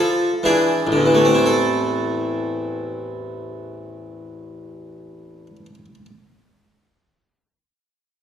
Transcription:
0, 0, Header, 1, 2, 480
1, 0, Start_track
1, 0, Key_signature, 0, "minor"
1, 0, Tempo, 1020408
1, 675, Time_signature, 4, 2, 24, 8
1, 3867, End_track
2, 0, Start_track
2, 0, Title_t, "Harpsichord"
2, 0, Program_c, 0, 6
2, 0, Note_on_c, 0, 53, 50
2, 0, Note_on_c, 0, 69, 61
2, 138, Note_off_c, 0, 53, 0
2, 201, Note_off_c, 0, 69, 0
2, 204, Note_on_c, 0, 52, 54
2, 213, Note_on_c, 0, 68, 58
2, 214, Note_on_c, 0, 64, 43
2, 215, Note_on_c, 0, 62, 45
2, 372, Note_off_c, 0, 52, 0
2, 408, Note_on_c, 0, 33, 56
2, 434, Note_on_c, 0, 50, 44
2, 452, Note_on_c, 0, 40, 44
2, 498, Note_on_c, 0, 52, 45
2, 539, Note_on_c, 0, 57, 47
2, 589, Note_on_c, 0, 60, 48
2, 608, Note_off_c, 0, 50, 0
2, 614, Note_off_c, 0, 68, 0
2, 627, Note_off_c, 0, 64, 0
2, 633, Note_on_c, 0, 64, 47
2, 667, Note_off_c, 0, 62, 0
2, 685, Note_on_c, 0, 69, 56
2, 2571, Note_off_c, 0, 33, 0
2, 2615, Note_off_c, 0, 40, 0
2, 2661, Note_off_c, 0, 52, 0
2, 2702, Note_off_c, 0, 57, 0
2, 2752, Note_off_c, 0, 60, 0
2, 2796, Note_off_c, 0, 64, 0
2, 2849, Note_off_c, 0, 69, 0
2, 3867, End_track
0, 0, End_of_file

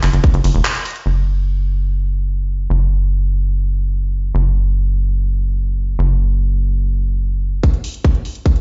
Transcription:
0, 0, Header, 1, 3, 480
1, 0, Start_track
1, 0, Tempo, 410959
1, 1237, Time_signature, 4, 2, 24, 8
1, 10055, End_track
2, 0, Start_track
2, 0, Title_t, "Analog synth bass"
2, 0, Program_c, 0, 38
2, 37, Note_on_c, 0, 30, 99
2, 119, Note_off_c, 0, 30, 0
2, 157, Note_on_c, 0, 30, 94
2, 239, Note_off_c, 0, 30, 0
2, 397, Note_on_c, 0, 30, 88
2, 479, Note_off_c, 0, 30, 0
2, 517, Note_on_c, 0, 30, 103
2, 599, Note_off_c, 0, 30, 0
2, 637, Note_on_c, 0, 28, 97
2, 719, Note_off_c, 0, 28, 0
2, 1237, Note_on_c, 0, 30, 84
2, 3133, Note_off_c, 0, 30, 0
2, 3157, Note_on_c, 0, 30, 90
2, 5053, Note_off_c, 0, 30, 0
2, 5077, Note_on_c, 0, 30, 91
2, 6973, Note_off_c, 0, 30, 0
2, 6997, Note_on_c, 0, 30, 88
2, 8893, Note_off_c, 0, 30, 0
2, 10055, End_track
3, 0, Start_track
3, 0, Title_t, "Drums"
3, 37, Note_on_c, 9, 39, 63
3, 37, Note_on_c, 9, 46, 93
3, 37, Note_on_c, 9, 51, 81
3, 154, Note_off_c, 9, 39, 0
3, 154, Note_off_c, 9, 46, 0
3, 154, Note_off_c, 9, 51, 0
3, 157, Note_on_c, 9, 42, 55
3, 274, Note_off_c, 9, 42, 0
3, 277, Note_on_c, 9, 36, 115
3, 277, Note_on_c, 9, 42, 88
3, 394, Note_off_c, 9, 36, 0
3, 394, Note_off_c, 9, 42, 0
3, 397, Note_on_c, 9, 42, 59
3, 514, Note_off_c, 9, 42, 0
3, 517, Note_on_c, 9, 46, 105
3, 517, Note_on_c, 9, 51, 84
3, 634, Note_off_c, 9, 46, 0
3, 634, Note_off_c, 9, 51, 0
3, 637, Note_on_c, 9, 42, 54
3, 754, Note_off_c, 9, 42, 0
3, 757, Note_on_c, 9, 39, 121
3, 757, Note_on_c, 9, 42, 40
3, 874, Note_off_c, 9, 39, 0
3, 874, Note_off_c, 9, 42, 0
3, 877, Note_on_c, 9, 42, 56
3, 994, Note_off_c, 9, 42, 0
3, 997, Note_on_c, 9, 46, 91
3, 997, Note_on_c, 9, 51, 81
3, 1057, Note_on_c, 9, 42, 70
3, 1114, Note_off_c, 9, 46, 0
3, 1114, Note_off_c, 9, 51, 0
3, 1118, Note_off_c, 9, 42, 0
3, 1118, Note_on_c, 9, 42, 56
3, 1234, Note_off_c, 9, 42, 0
3, 8917, Note_on_c, 9, 36, 116
3, 8917, Note_on_c, 9, 42, 80
3, 9034, Note_off_c, 9, 36, 0
3, 9034, Note_off_c, 9, 42, 0
3, 9037, Note_on_c, 9, 42, 38
3, 9154, Note_off_c, 9, 42, 0
3, 9157, Note_on_c, 9, 46, 104
3, 9274, Note_off_c, 9, 46, 0
3, 9277, Note_on_c, 9, 42, 54
3, 9394, Note_off_c, 9, 42, 0
3, 9397, Note_on_c, 9, 36, 122
3, 9397, Note_on_c, 9, 42, 85
3, 9514, Note_off_c, 9, 36, 0
3, 9514, Note_off_c, 9, 42, 0
3, 9517, Note_on_c, 9, 42, 36
3, 9634, Note_off_c, 9, 42, 0
3, 9637, Note_on_c, 9, 46, 91
3, 9754, Note_off_c, 9, 46, 0
3, 9757, Note_on_c, 9, 42, 52
3, 9874, Note_off_c, 9, 42, 0
3, 9877, Note_on_c, 9, 36, 114
3, 9877, Note_on_c, 9, 42, 83
3, 9994, Note_off_c, 9, 36, 0
3, 9994, Note_off_c, 9, 42, 0
3, 9997, Note_on_c, 9, 42, 39
3, 10055, Note_off_c, 9, 42, 0
3, 10055, End_track
0, 0, End_of_file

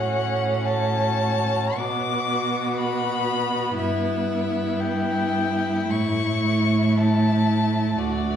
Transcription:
0, 0, Header, 1, 5, 480
1, 0, Start_track
1, 0, Tempo, 1032702
1, 302, Tempo, 1119403
1, 782, Tempo, 1006711
1, 1739, Time_signature, 4, 2, 24, 8
1, 2222, Tempo, 1090909
1, 3182, Tempo, 1018676
1, 3837, End_track
2, 0, Start_track
2, 0, Title_t, "Violin"
2, 0, Program_c, 0, 40
2, 0, Note_on_c, 0, 78, 62
2, 303, Note_on_c, 0, 81, 74
2, 309, Note_off_c, 0, 78, 0
2, 783, Note_on_c, 0, 86, 76
2, 790, Note_off_c, 0, 81, 0
2, 1263, Note_on_c, 0, 83, 75
2, 1270, Note_off_c, 0, 86, 0
2, 1737, Note_off_c, 0, 83, 0
2, 1740, Note_on_c, 0, 76, 59
2, 2225, Note_on_c, 0, 79, 70
2, 2231, Note_off_c, 0, 76, 0
2, 2712, Note_on_c, 0, 85, 75
2, 2718, Note_off_c, 0, 79, 0
2, 3182, Note_on_c, 0, 81, 70
2, 3189, Note_off_c, 0, 85, 0
2, 3661, Note_on_c, 0, 74, 60
2, 3668, Note_off_c, 0, 81, 0
2, 3837, Note_off_c, 0, 74, 0
2, 3837, End_track
3, 0, Start_track
3, 0, Title_t, "Violin"
3, 0, Program_c, 1, 40
3, 0, Note_on_c, 1, 66, 37
3, 765, Note_off_c, 1, 66, 0
3, 782, Note_on_c, 1, 66, 47
3, 1720, Note_off_c, 1, 66, 0
3, 1735, Note_on_c, 1, 64, 51
3, 3644, Note_off_c, 1, 64, 0
3, 3667, Note_on_c, 1, 66, 45
3, 3837, Note_off_c, 1, 66, 0
3, 3837, End_track
4, 0, Start_track
4, 0, Title_t, "Viola"
4, 0, Program_c, 2, 41
4, 0, Note_on_c, 2, 61, 52
4, 784, Note_on_c, 2, 59, 52
4, 791, Note_off_c, 2, 61, 0
4, 2704, Note_off_c, 2, 59, 0
4, 2707, Note_on_c, 2, 57, 55
4, 3837, Note_off_c, 2, 57, 0
4, 3837, End_track
5, 0, Start_track
5, 0, Title_t, "Cello"
5, 0, Program_c, 3, 42
5, 0, Note_on_c, 3, 45, 50
5, 781, Note_off_c, 3, 45, 0
5, 784, Note_on_c, 3, 47, 53
5, 1721, Note_off_c, 3, 47, 0
5, 1741, Note_on_c, 3, 43, 49
5, 2714, Note_on_c, 3, 45, 50
5, 2720, Note_off_c, 3, 43, 0
5, 3664, Note_off_c, 3, 45, 0
5, 3667, Note_on_c, 3, 38, 54
5, 3837, Note_off_c, 3, 38, 0
5, 3837, End_track
0, 0, End_of_file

